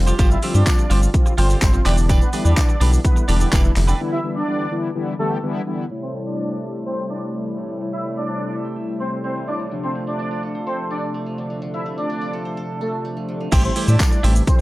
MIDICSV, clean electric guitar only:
0, 0, Header, 1, 3, 480
1, 0, Start_track
1, 0, Key_signature, 0, "minor"
1, 0, Tempo, 476190
1, 192, Time_signature, 4, 2, 24, 8
1, 14728, End_track
2, 0, Start_track
2, 0, Title_t, "Clean electric guitar"
2, 0, Program_c, 0, 27
2, 68, Note_on_c, 0, 72, 62
2, 76, Note_on_c, 0, 67, 55
2, 83, Note_on_c, 0, 65, 52
2, 176, Note_off_c, 0, 65, 0
2, 184, Note_off_c, 0, 67, 0
2, 188, Note_on_c, 0, 65, 91
2, 190, Note_off_c, 0, 72, 0
2, 196, Note_on_c, 0, 67, 94
2, 202, Note_on_c, 0, 72, 101
2, 297, Note_off_c, 0, 72, 0
2, 307, Note_off_c, 0, 67, 0
2, 382, Note_off_c, 0, 65, 0
2, 427, Note_on_c, 0, 65, 67
2, 435, Note_on_c, 0, 67, 70
2, 442, Note_on_c, 0, 72, 66
2, 535, Note_off_c, 0, 72, 0
2, 543, Note_off_c, 0, 67, 0
2, 547, Note_on_c, 0, 72, 64
2, 550, Note_off_c, 0, 65, 0
2, 555, Note_on_c, 0, 67, 61
2, 562, Note_on_c, 0, 65, 53
2, 656, Note_off_c, 0, 65, 0
2, 662, Note_off_c, 0, 67, 0
2, 666, Note_off_c, 0, 72, 0
2, 907, Note_on_c, 0, 65, 82
2, 915, Note_on_c, 0, 67, 84
2, 922, Note_on_c, 0, 72, 93
2, 1016, Note_off_c, 0, 72, 0
2, 1027, Note_off_c, 0, 67, 0
2, 1101, Note_off_c, 0, 65, 0
2, 1388, Note_on_c, 0, 65, 85
2, 1396, Note_on_c, 0, 67, 88
2, 1402, Note_on_c, 0, 72, 89
2, 1496, Note_off_c, 0, 72, 0
2, 1504, Note_off_c, 0, 67, 0
2, 1508, Note_on_c, 0, 72, 59
2, 1510, Note_off_c, 0, 65, 0
2, 1516, Note_on_c, 0, 67, 52
2, 1522, Note_on_c, 0, 65, 54
2, 1618, Note_off_c, 0, 65, 0
2, 1623, Note_off_c, 0, 67, 0
2, 1628, Note_off_c, 0, 72, 0
2, 1868, Note_on_c, 0, 62, 84
2, 1876, Note_on_c, 0, 67, 95
2, 1882, Note_on_c, 0, 71, 101
2, 1977, Note_off_c, 0, 71, 0
2, 1987, Note_off_c, 0, 67, 0
2, 2062, Note_off_c, 0, 62, 0
2, 2108, Note_on_c, 0, 62, 93
2, 2116, Note_on_c, 0, 67, 90
2, 2122, Note_on_c, 0, 71, 105
2, 2217, Note_off_c, 0, 71, 0
2, 2227, Note_off_c, 0, 67, 0
2, 2302, Note_off_c, 0, 62, 0
2, 2347, Note_on_c, 0, 62, 66
2, 2355, Note_on_c, 0, 67, 67
2, 2362, Note_on_c, 0, 71, 77
2, 2455, Note_off_c, 0, 71, 0
2, 2463, Note_off_c, 0, 67, 0
2, 2467, Note_on_c, 0, 71, 73
2, 2470, Note_off_c, 0, 62, 0
2, 2475, Note_on_c, 0, 67, 67
2, 2482, Note_on_c, 0, 62, 62
2, 2577, Note_off_c, 0, 62, 0
2, 2582, Note_off_c, 0, 67, 0
2, 2587, Note_off_c, 0, 71, 0
2, 2827, Note_on_c, 0, 62, 91
2, 2835, Note_on_c, 0, 67, 93
2, 2842, Note_on_c, 0, 71, 89
2, 2936, Note_off_c, 0, 71, 0
2, 2946, Note_off_c, 0, 67, 0
2, 3021, Note_off_c, 0, 62, 0
2, 3307, Note_on_c, 0, 62, 79
2, 3315, Note_on_c, 0, 67, 94
2, 3321, Note_on_c, 0, 71, 95
2, 3416, Note_off_c, 0, 71, 0
2, 3424, Note_off_c, 0, 67, 0
2, 3428, Note_on_c, 0, 71, 70
2, 3430, Note_off_c, 0, 62, 0
2, 3436, Note_on_c, 0, 67, 57
2, 3442, Note_on_c, 0, 62, 53
2, 3535, Note_off_c, 0, 62, 0
2, 3544, Note_off_c, 0, 67, 0
2, 3548, Note_on_c, 0, 62, 81
2, 3550, Note_off_c, 0, 71, 0
2, 3556, Note_on_c, 0, 67, 90
2, 3562, Note_on_c, 0, 71, 95
2, 3656, Note_off_c, 0, 71, 0
2, 3666, Note_off_c, 0, 67, 0
2, 3742, Note_off_c, 0, 62, 0
2, 3908, Note_on_c, 0, 71, 76
2, 3916, Note_on_c, 0, 67, 63
2, 3922, Note_on_c, 0, 62, 59
2, 4030, Note_off_c, 0, 71, 0
2, 4034, Note_off_c, 0, 67, 0
2, 4037, Note_off_c, 0, 62, 0
2, 13627, Note_on_c, 0, 64, 88
2, 13635, Note_on_c, 0, 67, 88
2, 13642, Note_on_c, 0, 72, 92
2, 13737, Note_off_c, 0, 72, 0
2, 13747, Note_off_c, 0, 67, 0
2, 13821, Note_off_c, 0, 64, 0
2, 13868, Note_on_c, 0, 64, 63
2, 13876, Note_on_c, 0, 67, 67
2, 13882, Note_on_c, 0, 72, 74
2, 13975, Note_off_c, 0, 72, 0
2, 13983, Note_off_c, 0, 67, 0
2, 13987, Note_on_c, 0, 72, 66
2, 13990, Note_off_c, 0, 64, 0
2, 13995, Note_on_c, 0, 67, 58
2, 14002, Note_on_c, 0, 64, 56
2, 14096, Note_off_c, 0, 64, 0
2, 14102, Note_off_c, 0, 67, 0
2, 14106, Note_off_c, 0, 72, 0
2, 14347, Note_on_c, 0, 64, 94
2, 14355, Note_on_c, 0, 67, 88
2, 14361, Note_on_c, 0, 72, 92
2, 14456, Note_off_c, 0, 72, 0
2, 14466, Note_off_c, 0, 67, 0
2, 14541, Note_off_c, 0, 64, 0
2, 14728, End_track
3, 0, Start_track
3, 0, Title_t, "Muted clean electric guitar strokes"
3, 309, Note_on_c, 9, 29, 44
3, 410, Note_off_c, 9, 29, 0
3, 789, Note_on_c, 9, 29, 48
3, 889, Note_off_c, 9, 29, 0
3, 1029, Note_on_c, 9, 29, 48
3, 1129, Note_off_c, 9, 29, 0
3, 1149, Note_on_c, 9, 29, 50
3, 1250, Note_off_c, 9, 29, 0
3, 1269, Note_on_c, 9, 29, 57
3, 1370, Note_off_c, 9, 29, 0
3, 1630, Note_on_c, 9, 29, 37
3, 1731, Note_off_c, 9, 29, 0
3, 1750, Note_on_c, 9, 29, 61
3, 1851, Note_off_c, 9, 29, 0
3, 1989, Note_on_c, 9, 29, 54
3, 2090, Note_off_c, 9, 29, 0
3, 2229, Note_on_c, 9, 29, 53
3, 2330, Note_off_c, 9, 29, 0
3, 2589, Note_on_c, 9, 29, 44
3, 2690, Note_off_c, 9, 29, 0
3, 2709, Note_on_c, 9, 29, 54
3, 2810, Note_off_c, 9, 29, 0
3, 2949, Note_on_c, 9, 29, 48
3, 3049, Note_off_c, 9, 29, 0
3, 3068, Note_on_c, 9, 29, 43
3, 3169, Note_off_c, 9, 29, 0
3, 3188, Note_on_c, 9, 29, 58
3, 3289, Note_off_c, 9, 29, 0
3, 3669, Note_on_c, 9, 29, 49
3, 3769, Note_off_c, 9, 29, 0
3, 3789, Note_on_c, 9, 29, 43
3, 3890, Note_off_c, 9, 29, 0
3, 13749, Note_on_c, 9, 29, 45
3, 13850, Note_off_c, 9, 29, 0
3, 14108, Note_on_c, 9, 29, 49
3, 14209, Note_off_c, 9, 29, 0
3, 14228, Note_on_c, 9, 29, 45
3, 14329, Note_off_c, 9, 29, 0
3, 14469, Note_on_c, 9, 29, 52
3, 14569, Note_off_c, 9, 29, 0
3, 14588, Note_on_c, 9, 29, 38
3, 14689, Note_off_c, 9, 29, 0
3, 14728, End_track
0, 0, End_of_file